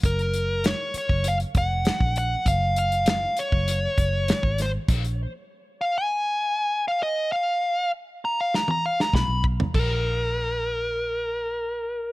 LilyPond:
<<
  \new Staff \with { instrumentName = "Lead electric guitar" } { \time 4/4 \key bes \minor \tempo 4 = 99 bes'4 des''8 des''8 f''8 ges''4 ges''8 | f''8 f''8 f''8 des''2 c''8 | r4. f''16 aes''4. f''16 ees''8 | f''4 r8 bes''16 f''16 bes''16 bes''16 f''16 bes''16 ces'''8 r8 |
bes'1 | }
  \new Staff \with { instrumentName = "Fingered electric bass" } { \clef bass \time 4/4 \key bes \minor ges,,4. r16 ges,,8. f,,8. bes,,8. | ges,,4.~ ges,,16 ges,,8. ges,,8. aes,,8. | bes,,8. r2. r16 | r2. ces,16 ces,8. |
bes,,1 | }
  \new DrumStaff \with { instrumentName = "Drums" } \drummode { \time 4/4 <hh bd>16 hh16 hh8 <hh sn>8 hh16 bd16 hh16 hh16 <hh bd>8 <hh sn>16 bd16 hh8 | <hh bd>8 hh16 hh16 <hh sn>8 hh16 bd16 hh8 <hh bd>8 <hh sn>16 bd16 <hh sn>8 | <cymc hh bd>16 hh8. r4 r4 r4 | r4 r4 sn16 tommh8 sn16 <bd sn>8 bd16 tomfh16 |
<cymc bd>4 r4 r4 r4 | }
>>